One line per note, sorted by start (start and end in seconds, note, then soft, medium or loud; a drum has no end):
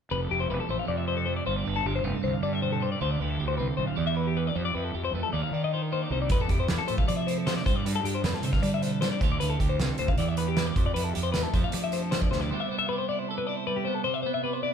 0.11 0.28 F1 medium
0.11 1.26 F2 medium
0.11 0.50 G4 medium
0.11 0.21 B4 medium
0.21 0.30 A4 medium
0.30 0.47 F1 medium
0.30 1.44 E4 soft
0.30 0.40 G4 medium
0.40 0.50 C5 medium
0.50 0.59 E1 medium
0.50 1.44 G4 medium
0.50 0.59 B4 medium
0.60 0.69 A4 medium
0.69 0.77 A1 medium
0.69 1.46 A3 medium
0.69 0.79 C5 medium
0.79 0.88 F5 medium
0.87 1.40 F2 medium
0.87 1.45 C3 medium
0.87 0.97 D5 medium
0.98 1.07 E5 medium
1.08 1.17 C5 medium
1.17 1.26 A4 medium
1.26 1.45 F2 medium
1.26 1.36 C5 medium
1.36 1.46 D5 medium
1.46 1.64 G1 medium
1.46 2.61 G2 medium
1.46 1.85 F4 medium
1.46 1.56 C5 medium
1.56 1.67 D5 medium
1.66 1.83 G1 medium
1.66 2.42 D4 medium
1.66 1.76 B4 medium
1.76 1.86 A4 medium
1.85 2.02 G1 medium
1.85 3.00 F4 medium
1.85 1.95 G4 medium
1.96 2.04 C5 medium
2.04 2.12 F1 medium
2.04 2.98 C4 medium
2.04 2.15 B4 medium
2.15 2.23 A4 medium
2.23 2.32 C2 medium
2.23 2.81 D3 medium
2.23 2.33 C5 medium
2.33 2.43 F5 medium
2.43 2.94 G2 medium
2.43 2.98 D4 medium
2.43 2.53 D5 medium
2.53 2.62 E5 medium
2.62 2.82 B2 soft
2.62 2.72 C5 medium
2.72 2.81 A4 medium
2.81 3.00 C3 medium
2.81 2.91 C5 medium
2.92 3.01 D5 medium
3.00 3.18 D2 medium
3.00 3.95 D3 medium
3.00 3.39 F4 medium
3.00 3.11 C5 medium
3.11 3.20 D5 medium
3.20 3.37 D2 medium
3.20 3.96 E4 soft
3.20 3.30 B4 medium
3.30 3.40 A4 medium
3.40 3.57 D2 medium
3.40 3.48 G4 medium
3.40 3.95 G4 medium
3.48 3.57 C5 medium
3.57 3.68 C2 medium
3.57 3.95 C4 medium
3.57 3.68 B4 medium
3.68 3.77 A4 medium
3.77 3.87 B1 medium
3.77 3.95 A2 medium
3.77 3.87 C5 medium
3.87 3.97 F5 medium
3.96 4.49 E2 medium
3.96 4.52 E3 medium
3.96 4.37 G4 medium
3.96 4.06 D5 medium
4.07 4.16 E5 medium
4.16 4.53 D4 soft
4.16 4.26 B4 medium
4.27 4.36 G4 medium
4.37 4.55 G4 medium
4.37 4.47 B4 medium
4.47 4.56 D5 medium
4.55 5.33 F2 medium
4.55 4.73 F2 medium
4.55 4.94 G4 medium
4.55 4.65 C5 medium
4.65 4.75 D5 medium
4.75 4.92 F2 medium
4.75 5.31 E4 medium
4.75 4.84 B4 medium
4.84 4.95 A4 medium
4.94 5.11 F2 medium
4.94 5.34 G4 soft
4.94 5.04 G4 medium
5.05 5.13 C5 medium
5.13 5.22 F2 medium
5.13 5.34 A3 medium
5.13 5.23 B4 medium
5.23 5.32 A4 medium
5.33 5.41 D#2 medium
5.33 6.09 D#3 medium
5.33 5.73 F4 medium
5.33 5.42 D5 medium
5.43 5.53 F5 medium
5.51 6.03 D#3 medium
5.51 6.28 D4 medium
5.51 5.62 D5 medium
5.64 5.73 D#5 medium
5.73 6.31 F4 soft
5.73 5.82 C5 medium
5.82 5.91 A#4 medium
5.92 6.28 A#3 soft
5.92 6.02 C5 medium
6.02 6.11 D5 medium
6.10 6.28 C2 medium
6.10 6.27 D#3 medium
6.10 6.21 C5 medium
6.22 6.31 D5 medium
6.29 6.47 F2 medium
6.29 7.66 F2 medium
6.29 6.40 F4 soft
6.29 6.40 B4 medium
6.29 kick medium
6.29 closed hi-hat medium
6.40 6.68 G4 medium
6.40 6.51 A4 medium
6.49 6.67 F2 medium
6.49 7.26 E4 soft
6.49 6.60 G4 medium
6.49 kick medium
6.49 closed hi-hat medium
6.60 6.68 C5 medium
6.68 6.78 E2 medium
6.68 7.46 G4 soft
6.68 6.78 B4 medium
6.68 snare medium
6.68 closed hi-hat medium
6.78 6.88 A4 medium
6.88 6.98 A2 medium
6.88 7.66 A3 soft
6.88 6.98 C5 medium
6.88 closed hi-hat medium
6.98 7.08 F5 medium
6.98 kick medium
7.08 7.66 C3 medium
7.08 7.60 F3 medium
7.08 7.16 D5 medium
7.08 closed hi-hat medium
7.17 7.27 E5 medium
7.27 7.64 E4 soft
7.27 7.38 C5 medium
7.27 closed hi-hat medium
7.38 7.47 A4 medium
7.47 7.64 A4 soft
7.47 7.56 C5 medium
7.47 snare loud
7.47 closed hi-hat medium
7.57 7.66 D5 medium
7.57 snare soft
7.66 8.82 G2 medium
7.66 7.83 G2 medium
7.66 8.04 F4 medium
7.66 7.76 C5 medium
7.66 kick medium
7.66 closed hi-hat medium
7.76 7.86 D5 medium
7.86 8.03 G2 medium
7.86 8.63 D4 medium
7.86 7.95 B4 medium
7.86 closed hi-hat medium
7.95 8.05 A4 medium
8.04 8.22 G2 medium
8.04 9.22 F4 medium
8.04 8.14 G4 medium
8.04 closed hi-hat medium
8.15 8.24 C5 medium
8.23 8.32 F2 medium
8.23 9.19 C4 medium
8.23 8.34 B4 medium
8.23 snare medium
8.23 closed hi-hat medium
8.34 8.44 A4 medium
8.34 snare soft
8.43 8.52 C3 medium
8.43 9.02 D3 medium
8.43 8.53 C5 medium
8.43 closed hi-hat medium
8.52 8.62 F5 medium
8.52 kick medium
8.52 snare soft
8.62 9.15 G3 medium
8.62 9.20 D4 medium
8.62 8.72 D5 medium
8.62 closed hi-hat medium
8.74 8.82 E5 medium
8.82 9.02 B2 soft
8.82 8.92 C5 medium
8.82 closed hi-hat soft
8.92 9.01 A4 medium
9.01 9.22 C3 soft
9.01 9.11 C5 medium
9.01 snare medium
9.01 closed hi-hat medium
9.12 9.21 D5 medium
9.21 9.38 D2 medium
9.21 10.17 D3 medium
9.21 9.60 F4 medium
9.21 9.31 C5 medium
9.21 kick medium
9.21 closed hi-hat soft
9.32 9.40 D5 medium
9.40 9.59 D2 medium
9.40 10.17 E4 soft
9.40 9.50 B4 medium
9.40 closed hi-hat medium
9.50 9.60 A4 medium
9.60 9.78 D2 medium
9.60 9.69 G4 medium
9.60 10.16 G4 medium
9.60 kick medium
9.60 closed hi-hat soft
9.69 9.79 C5 medium
9.79 9.88 C2 medium
9.79 10.17 C4 medium
9.79 9.89 B4 medium
9.79 snare medium
9.79 closed hi-hat medium
9.89 9.99 A4 medium
9.98 10.08 D2 medium
9.98 10.16 A2 medium
9.98 10.09 C5 medium
9.98 closed hi-hat medium
10.08 10.18 F5 medium
10.08 kick medium
10.18 10.70 E2 medium
10.18 10.75 E3 medium
10.18 10.57 G4 medium
10.18 10.29 D5 medium
10.18 closed hi-hat medium
10.29 10.37 E5 medium
10.37 10.75 D4 soft
10.37 10.48 B4 medium
10.37 closed hi-hat medium
10.48 10.57 G4 medium
10.57 10.77 G4 medium
10.57 10.66 B4 medium
10.57 snare medium
10.57 closed hi-hat medium
10.66 10.76 D5 medium
10.76 10.94 F2 medium
10.76 11.53 F2 medium
10.76 11.14 G4 medium
10.76 10.86 C5 medium
10.76 kick medium
10.76 closed hi-hat medium
10.86 10.94 D5 medium
10.94 11.13 F2 medium
10.94 11.52 E4 medium
10.94 11.04 B4 medium
10.94 closed hi-hat medium
11.04 11.13 A4 medium
11.13 11.33 F2 medium
11.13 11.23 G4 medium
11.13 11.52 G4 medium
11.13 closed hi-hat medium
11.23 11.32 C5 medium
11.32 12.12 A3 medium
11.32 11.43 B4 medium
11.32 snare medium
11.32 closed hi-hat medium
11.36 11.44 E2 medium
11.43 11.54 A4 medium
11.53 12.51 F2 medium
11.53 11.63 F2 medium
11.53 11.64 F4 medium
11.53 11.64 C5 medium
11.53 kick medium
11.53 closed hi-hat medium
11.64 11.92 G4 soft
11.64 11.75 F5 medium
11.72 12.26 F3 medium
11.72 12.49 D4 medium
11.72 11.83 D5 medium
11.72 closed hi-hat medium
11.84 11.93 E5 medium
11.92 12.49 G4 soft
11.92 12.03 C5 medium
11.92 closed hi-hat medium
12.03 12.12 A4 medium
12.11 12.52 A3 medium
12.11 12.21 C5 medium
12.11 snare medium
12.11 closed hi-hat medium
12.21 12.31 D5 medium
12.21 kick medium
12.31 12.50 D2 medium
12.31 12.50 C3 medium
12.31 12.41 C5 medium
12.31 snare soft
12.41 12.51 D5 medium
12.51 14.05 C3 medium
12.51 13.66 G3 medium
12.51 12.71 B3 medium
12.51 13.10 E4 medium
12.51 12.92 G4 medium
12.51 12.60 C5 medium
12.60 12.69 E5 medium
12.69 13.86 B3 medium
12.69 12.78 C5 medium
12.79 12.88 E5 medium
12.89 13.30 G4 medium
12.89 12.98 B4 medium
12.98 13.08 C5 medium
13.09 13.48 E4 medium
13.09 13.19 D5 medium
13.19 13.29 C5 medium
13.29 13.38 A4 medium
13.29 14.05 A4 medium
13.38 13.47 B4 medium
13.47 14.64 E4 soft
13.47 13.57 D5 medium
13.57 13.67 C5 medium
13.67 14.04 G3 medium
13.67 13.77 B4 medium
13.76 13.86 G4 medium
13.85 14.04 B3 medium
13.85 13.95 C5 medium
13.95 14.04 A4 medium
14.04 14.74 C3 medium
14.04 14.14 C5 medium
14.14 14.22 E5 medium
14.23 14.74 B3 medium
14.23 14.34 C5 medium
14.34 14.43 E5 medium
14.44 14.74 G4 medium
14.44 14.53 B4 medium
14.53 14.63 C5 medium
14.63 14.74 E4 medium
14.63 14.73 D5 medium